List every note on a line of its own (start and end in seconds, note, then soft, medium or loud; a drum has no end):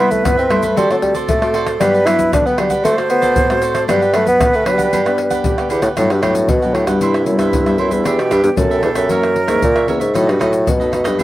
0.00 0.22 C3 medium
0.00 0.46 G3 medium
0.00 0.13 B3 medium
0.00 0.46 B3 medium
0.00 0.46 E4 medium
0.00 0.79 B4 loud
0.00 0.10 E5 medium
0.10 0.26 A3 medium
0.10 muted cavaquinho stroke soft
0.10 pandeiro medium
0.10 shaker medium
0.10 surdo soft
0.24 0.74 G2 medium
0.24 0.37 B3 medium
0.24 pandeiro medium
0.24 tamborim medium
0.24 shaker medium
0.24 surdo loud
0.37 0.52 C4 medium
0.37 0.49 B4 soft
0.37 0.49 C5 soft
0.37 0.49 E5 medium
0.37 pandeiro soft
0.37 shaker soft
0.50 0.66 G3 medium
0.50 0.79 A3 medium
0.50 0.66 B3 medium
0.50 0.62 E4 medium
0.50 0.66 E4 medium
0.50 0.62 B4 medium
0.50 0.62 C5 medium
0.50 0.61 E5 medium
0.50 pandeiro medium
0.50 tamborim medium
0.62 0.75 B4 medium
0.62 0.76 C5 medium
0.62 0.75 E5 medium
0.62 pandeiro medium
0.62 shaker medium
0.62 surdo soft
0.77 1.26 D3 medium
0.77 0.90 G3 loud
0.77 0.85 A3 medium
0.77 0.86 C4 medium
0.77 0.88 F#4 medium
0.77 0.86 F#4 medium
0.77 1.82 A4 loud
0.77 0.89 A4 medium
0.77 0.89 C5 medium
0.77 0.89 D5 medium
0.77 pandeiro medium
0.77 shaker medium
0.77 surdo medium
0.90 0.97 F#3 medium
0.90 1.38 A3 medium
0.90 1.38 C4 medium
0.90 1.38 F#4 medium
0.90 1.01 A4 soft
0.90 1.02 C5 soft
0.90 pandeiro soft
0.90 tamborim medium
0.90 shaker soft
1.02 1.14 G3 medium
1.02 muted cavaquinho stroke soft
1.02 pandeiro medium
1.02 surdo soft
1.14 1.41 A4 medium
1.14 1.40 C5 medium
1.14 1.40 D5 medium
1.14 pandeiro medium
1.14 shaker medium
1.14 surdo soft
1.29 1.78 A2 medium
1.29 1.65 A3 medium
1.29 pandeiro medium
1.29 shaker medium
1.29 surdo loud
1.41 1.76 A3 medium
1.41 1.76 C4 medium
1.41 1.76 F#4 medium
1.41 1.54 A4 soft
1.41 1.54 C5 medium
1.41 1.53 D5 medium
1.41 pandeiro soft
1.41 tamborim medium
1.41 shaker soft
1.54 1.66 F#4 medium
1.54 1.66 A4 medium
1.54 1.66 C5 medium
1.54 1.65 D5 medium
1.54 pandeiro medium
1.66 1.80 A4 soft
1.66 1.79 C5 medium
1.66 1.79 D5 medium
1.66 pandeiro medium
1.66 tamborim medium
1.66 shaker medium
1.66 surdo soft
1.80 2.29 G2 medium
1.80 2.02 F#3 medium
1.80 2.08 G3 loud
1.80 2.02 B3 medium
1.80 1.92 D4 medium
1.80 2.02 D4 medium
1.80 1.93 G4 medium
1.80 2.58 B4 medium
1.80 1.93 B4 medium
1.80 1.93 F#5 medium
1.80 pandeiro medium
1.80 tamborim medium
1.80 shaker medium
1.80 surdo medium
1.94 2.05 G4 soft
1.94 2.05 B4 soft
1.94 2.05 F#5 medium
1.94 pandeiro soft
1.94 shaker soft
2.06 2.54 F#3 medium
2.06 2.54 B3 medium
2.06 2.17 D4 medium
2.06 2.54 D4 medium
2.06 2.32 E4 loud
2.06 2.18 G4 medium
2.06 2.18 B4 medium
2.06 2.19 F#5 medium
2.06 pandeiro medium
2.06 tamborim medium
2.06 shaker medium
2.18 muted cavaquinho stroke soft
2.18 pandeiro medium
2.18 shaker medium
2.18 surdo soft
2.32 2.82 D3 medium
2.32 2.48 D4 loud
2.32 pandeiro medium
2.32 tamborim medium
2.32 shaker medium
2.32 surdo loud
2.45 2.61 B3 medium
2.45 2.57 G4 soft
2.45 2.58 B4 soft
2.45 2.57 F#5 soft
2.45 pandeiro soft
2.45 shaker soft
2.58 2.73 F#3 medium
2.58 2.84 G3 medium
2.58 2.73 B3 medium
2.58 2.70 D4 medium
2.58 2.74 D4 medium
2.58 2.70 G4 medium
2.58 2.70 B4 medium
2.58 2.69 F#5 medium
2.58 pandeiro medium
2.58 tamborim medium
2.70 2.84 G4 medium
2.70 2.83 B4 medium
2.70 2.83 F#5 medium
2.70 pandeiro medium
2.70 shaker medium
2.70 surdo soft
2.84 3.34 D3 medium
2.84 2.96 A3 loud
2.84 2.92 A3 medium
2.84 2.92 C4 medium
2.84 2.96 F#4 medium
2.84 2.92 F#4 medium
2.84 2.96 A4 medium
2.84 3.84 C5 loud
2.84 2.97 C5 medium
2.84 2.96 D5 medium
2.84 pandeiro medium
2.84 shaker medium
2.84 surdo medium
2.97 3.45 A3 medium
2.97 3.46 F#4 medium
2.97 3.09 A4 soft
2.97 3.09 C5 soft
2.97 3.09 D5 medium
2.97 pandeiro soft
2.97 tamborim medium
2.97 shaker soft
3.10 3.59 B3 loud
3.10 muted cavaquinho stroke soft
3.10 pandeiro medium
3.22 3.48 A4 medium
3.22 3.48 C5 medium
3.22 3.47 D5 medium
3.22 pandeiro medium
3.22 shaker medium
3.22 surdo soft
3.36 3.86 A2 medium
3.36 pandeiro medium
3.36 shaker medium
3.36 surdo loud
3.50 3.85 A3 medium
3.50 3.85 C4 medium
3.50 3.85 F#4 medium
3.50 3.62 A4 soft
3.50 3.62 C5 soft
3.50 3.61 D5 medium
3.50 pandeiro soft
3.50 tamborim medium
3.50 shaker soft
3.62 3.74 F#4 medium
3.62 3.74 A4 medium
3.62 3.74 C5 medium
3.62 3.73 D5 medium
3.62 pandeiro medium
3.62 shaker medium
3.74 3.88 A4 soft
3.74 3.87 C5 soft
3.74 3.87 D5 medium
3.74 pandeiro medium
3.74 tamborim medium
3.74 shaker medium
3.74 surdo soft
3.88 4.38 G2 medium
3.88 4.04 F#3 medium
3.88 4.17 G3 loud
3.88 4.04 B3 medium
3.88 4.00 D4 medium
3.88 4.04 D4 medium
3.88 4.00 G4 medium
3.88 5.40 B4 loud
3.88 4.01 B4 medium
3.88 4.00 F#5 medium
3.88 pandeiro medium
3.88 tamborim medium
3.88 shaker medium
3.88 surdo medium
4.01 4.12 G4 soft
4.01 4.13 B4 soft
4.01 4.13 F#5 soft
4.01 pandeiro soft
4.01 shaker soft
4.13 4.48 F#3 medium
4.13 4.28 A3 loud
4.13 4.48 B3 medium
4.13 4.24 D4 medium
4.13 4.48 D4 medium
4.13 4.24 G4 medium
4.13 4.25 B4 medium
4.13 4.25 F#5 medium
4.13 pandeiro medium
4.13 tamborim medium
4.25 4.57 B3 loud
4.25 muted cavaquinho stroke soft
4.25 pandeiro medium
4.25 shaker medium
4.25 surdo soft
4.41 4.90 D3 medium
4.41 pandeiro medium
4.41 tamborim medium
4.41 shaker medium
4.41 surdo loud
4.53 4.66 A3 medium
4.53 4.65 G4 soft
4.53 4.65 B4 soft
4.53 4.65 F#5 medium
4.53 pandeiro soft
4.53 shaker soft
4.65 4.88 F#3 medium
4.65 5.67 G3 medium
4.65 4.88 B3 medium
4.65 4.78 D4 medium
4.65 4.88 D4 medium
4.65 4.78 G4 medium
4.65 4.78 B4 medium
4.65 4.77 F#5 medium
4.65 pandeiro medium
4.65 tamborim medium
4.78 4.91 G4 medium
4.78 4.91 B4 medium
4.78 4.91 F#5 medium
4.78 pandeiro medium
4.78 shaker medium
4.78 surdo soft
4.93 5.42 G2 medium
4.93 5.00 F#3 medium
4.93 5.00 B3 medium
4.93 5.04 D4 medium
4.93 5.01 D4 medium
4.93 5.05 G4 medium
4.93 5.05 B4 medium
4.93 5.04 F#5 medium
4.93 pandeiro medium
4.93 shaker medium
4.93 surdo medium
5.05 5.54 B3 medium
5.05 5.54 D4 medium
5.05 5.17 G4 soft
5.05 5.18 B4 soft
5.05 5.17 F#5 soft
5.05 pandeiro soft
5.05 tamborim medium
5.05 shaker soft
5.18 muted cavaquinho stroke soft
5.18 pandeiro medium
5.30 5.57 G4 medium
5.30 5.56 B4 medium
5.30 5.56 F#5 medium
5.30 pandeiro medium
5.30 shaker medium
5.30 surdo soft
5.44 5.95 D3 medium
5.44 5.93 G4 medium
5.44 pandeiro medium
5.44 shaker medium
5.44 surdo loud
5.58 5.93 B3 medium
5.58 5.94 D4 medium
5.58 5.70 G4 soft
5.58 5.70 B4 soft
5.58 5.70 F#5 medium
5.58 pandeiro soft
5.58 tamborim medium
5.58 shaker soft
5.70 5.82 E2 medium
5.70 5.82 D4 medium
5.70 5.83 G4 medium
5.70 5.83 B4 medium
5.70 5.81 F#5 medium
5.70 pandeiro medium
5.70 shaker medium
5.82 5.89 A2 loud
5.82 5.96 G4 soft
5.82 5.96 B4 soft
5.82 5.95 F#5 soft
5.82 pandeiro medium
5.82 tamborim medium
5.82 shaker medium
5.82 surdo soft
5.97 6.47 G2 medium
5.97 6.13 A2 loud
5.97 6.12 F#3 medium
5.97 6.13 B3 medium
5.97 6.09 D4 medium
5.97 6.13 D4 medium
5.97 6.97 F#4 medium
5.97 6.09 G4 medium
5.97 6.09 B4 medium
5.97 6.10 F#5 medium
5.97 pandeiro medium
5.97 tamborim medium
5.97 shaker medium
5.97 surdo medium
6.10 6.24 G2 medium
6.10 6.21 G4 soft
6.10 6.22 B4 soft
6.10 6.22 F#5 soft
6.10 pandeiro soft
6.10 tamborim medium
6.10 shaker soft
6.22 6.51 A2 loud
6.22 6.47 F#3 medium
6.22 6.47 B3 medium
6.22 6.34 D4 medium
6.22 6.48 D4 medium
6.22 6.34 G4 medium
6.22 6.34 B4 medium
6.22 6.35 F#5 medium
6.22 pandeiro medium
6.22 tamborim medium
6.22 surdo soft
6.35 muted cavaquinho stroke soft
6.35 pandeiro medium
6.35 shaker medium
6.49 6.75 B2 loud
6.49 6.99 D3 medium
6.49 pandeiro medium
6.49 shaker medium
6.49 surdo loud
6.62 6.84 F#3 medium
6.62 6.85 B3 medium
6.62 6.85 D4 medium
6.62 6.74 G4 soft
6.62 6.74 B4 soft
6.62 6.74 F#5 soft
6.62 pandeiro soft
6.62 shaker soft
6.74 6.88 A2 medium
6.74 6.87 D4 soft
6.74 6.87 G4 medium
6.74 6.87 B4 medium
6.74 6.86 F#5 medium
6.74 pandeiro medium
6.74 tamborim medium
6.87 7.28 G2 medium
6.87 7.23 G3 medium
6.87 7.23 B3 medium
6.87 7.23 E4 medium
6.87 7.00 G4 medium
6.87 7.00 B4 medium
6.87 7.00 F#5 medium
6.87 pandeiro medium
6.87 tamborim medium
6.87 shaker medium
6.87 surdo soft
7.01 7.51 C3 medium
7.01 8.06 E4 medium
7.01 7.13 E4 medium
7.01 7.14 B4 medium
7.01 7.14 C5 medium
7.01 7.14 E5 medium
7.01 pandeiro medium
7.01 shaker medium
7.01 surdo medium
7.14 7.27 B4 soft
7.14 7.26 C5 soft
7.14 7.26 E5 medium
7.14 pandeiro soft
7.14 tamborim medium
7.14 shaker soft
7.26 7.39 F#2 medium
7.26 7.62 G3 medium
7.26 7.62 B3 medium
7.26 7.63 E4 medium
7.26 muted cavaquinho stroke soft
7.26 pandeiro medium
7.26 shaker medium
7.38 7.80 G2 medium
7.38 7.65 B4 medium
7.38 7.66 C5 medium
7.38 7.65 E5 medium
7.38 pandeiro medium
7.38 tamborim medium
7.38 shaker medium
7.38 surdo soft
7.53 8.03 G2 medium
7.53 pandeiro medium
7.53 shaker medium
7.53 surdo loud
7.66 7.88 G3 medium
7.66 7.89 B3 medium
7.66 7.89 E4 medium
7.66 7.79 B4 soft
7.66 7.78 C5 soft
7.66 7.79 E5 soft
7.66 pandeiro soft
7.66 tamborim medium
7.66 shaker soft
7.78 7.93 F#2 medium
7.78 7.91 E4 medium
7.78 7.91 B4 medium
7.78 7.91 C5 medium
7.78 7.90 E5 medium
7.78 pandeiro medium
7.78 surdo soft
7.91 8.21 E2 medium
7.91 8.27 B3 medium
7.91 8.27 D4 medium
7.91 8.28 G4 medium
7.91 8.04 B4 soft
7.91 8.04 C5 soft
7.91 8.04 E5 soft
7.91 pandeiro medium
7.91 shaker medium
7.91 surdo soft
8.04 8.55 E3 medium
8.04 8.17 D4 medium
8.04 8.58 G4 loud
8.04 8.17 G4 medium
8.04 8.18 B4 medium
8.04 8.17 E5 medium
8.04 pandeiro medium
8.04 tamborim medium
8.04 shaker medium
8.04 surdo medium
8.19 8.33 B2 medium
8.19 8.30 G4 soft
8.19 8.30 B4 soft
8.19 8.30 E5 soft
8.19 pandeiro soft
8.19 tamborim medium
8.19 shaker soft
8.30 8.43 G2 medium
8.30 8.42 D4 medium
8.30 8.43 G4 medium
8.30 8.43 B4 medium
8.30 8.43 E5 medium
8.30 pandeiro medium
8.30 tamborim medium
8.30 shaker medium
8.30 surdo soft
8.43 8.50 G2 medium
8.43 8.79 B3 medium
8.43 8.79 D4 medium
8.43 8.79 G4 medium
8.43 muted cavaquinho stroke soft
8.43 pandeiro medium
8.43 shaker medium
8.57 8.82 F#2 medium
8.57 9.07 B2 medium
8.57 9.12 A4 loud
8.57 pandeiro medium
8.57 shaker medium
8.57 surdo loud
8.71 8.82 G4 soft
8.71 8.83 B4 soft
8.71 8.83 E5 medium
8.71 pandeiro soft
8.71 shaker soft
8.83 8.90 E2 medium
8.83 9.05 B3 medium
8.83 8.95 D4 soft
8.83 9.06 D4 medium
8.83 8.96 G4 medium
8.83 9.06 G4 medium
8.83 8.96 B4 medium
8.83 8.95 E5 medium
8.83 pandeiro medium
8.83 tamborim medium
8.95 9.50 F#2 medium
8.95 9.09 G4 medium
8.95 9.09 B4 medium
8.95 9.08 E5 medium
8.95 pandeiro medium
8.95 tamborim medium
8.95 shaker medium
8.95 surdo soft
9.09 9.59 F#2 medium
9.09 9.34 E3 medium
9.09 9.34 A#3 medium
9.09 9.35 C#4 medium
9.09 9.22 F#4 medium
9.09 9.91 A#4 loud
9.09 9.22 A#4 medium
9.09 9.22 C#5 medium
9.09 9.22 E5 medium
9.09 pandeiro medium
9.09 shaker medium
9.09 surdo medium
9.23 9.35 A#4 soft
9.23 9.35 C#5 soft
9.23 9.35 E5 soft
9.23 pandeiro soft
9.23 tamborim medium
9.23 shaker soft
9.36 muted cavaquinho stroke soft
9.36 pandeiro medium
9.48 9.62 G#2 medium
9.48 9.83 E3 medium
9.48 9.84 A#3 medium
9.48 9.84 C#4 medium
9.48 9.74 A#4 soft
9.48 9.74 C#5 medium
9.48 9.73 E5 medium
9.48 pandeiro medium
9.48 tamborim medium
9.48 shaker medium
9.48 surdo soft
9.62 9.88 A#2 medium
9.62 10.12 C#3 medium
9.62 pandeiro medium
9.62 shaker medium
9.62 surdo loud
9.75 9.87 A#4 soft
9.75 9.88 C#5 soft
9.75 9.87 E5 medium
9.75 pandeiro soft
9.75 tamborim medium
9.75 shaker soft
9.87 10.01 E2 medium
9.87 10.03 E3 medium
9.87 10.03 A#3 medium
9.87 10.04 C#4 medium
9.87 10.00 F#4 medium
9.87 10.00 A#4 medium
9.87 10.00 C#5 medium
9.87 9.99 E5 medium
9.87 pandeiro medium
9.87 surdo soft
10.00 10.17 G#2 medium
10.00 10.14 A#4 soft
10.00 10.13 C#5 soft
10.00 10.13 E5 medium
10.00 pandeiro medium
10.00 shaker medium
10.00 surdo soft
10.14 10.31 A2 loud
10.14 10.64 B2 medium
10.14 10.36 F#3 medium
10.14 10.36 A3 medium
10.14 10.26 D#4 medium
10.14 10.37 D#4 medium
10.14 10.88 F#4 medium
10.14 10.26 A4 medium
10.14 10.27 B4 medium
10.14 10.26 D#5 medium
10.14 pandeiro medium
10.14 tamborim medium
10.14 shaker medium
10.14 surdo medium
10.27 10.43 G2 medium
10.27 10.38 A4 soft
10.27 10.39 B4 soft
10.27 10.39 D#5 soft
10.27 pandeiro soft
10.27 tamborim medium
10.27 shaker soft
10.39 10.71 A2 loud
10.39 10.65 F#3 medium
10.39 10.65 A3 medium
10.39 10.51 D#4 medium
10.39 10.65 D#4 medium
10.39 10.51 A4 medium
10.39 10.51 B4 medium
10.39 10.52 D#5 medium
10.39 pandeiro medium
10.39 tamborim medium
10.39 shaker medium
10.39 surdo soft
10.52 muted cavaquinho stroke soft
10.52 pandeiro medium
10.52 shaker medium
10.67 11.16 F#2 medium
10.67 10.94 B2 medium
10.67 pandeiro medium
10.67 shaker medium
10.67 surdo loud
10.80 11.02 F#3 medium
10.80 11.02 A3 medium
10.80 11.03 D#4 medium
10.80 10.91 A4 soft
10.80 10.92 B4 soft
10.80 10.92 D#5 medium
10.80 pandeiro soft
10.80 shaker soft
10.92 11.09 B2 medium
10.92 11.04 D#4 medium
10.92 11.05 A4 medium
10.92 11.04 B4 medium
10.92 11.03 D#5 medium
10.92 pandeiro medium
10.92 tamborim medium
10.92 shaker medium
11.04 11.23 G2 medium
11.04 11.23 B3 medium
11.04 11.23 D4 medium
11.04 11.23 G4 medium
11.04 11.18 A4 medium
11.04 11.18 B4 medium
11.04 11.17 D#5 medium
11.04 pandeiro medium
11.04 tamborim medium
11.04 shaker medium
11.04 surdo soft
11.19 11.23 E3 medium
11.19 11.23 D4 medium
11.19 11.23 E4 medium
11.19 11.23 G4 medium
11.19 11.23 B4 medium
11.19 pandeiro medium
11.19 shaker medium
11.19 surdo medium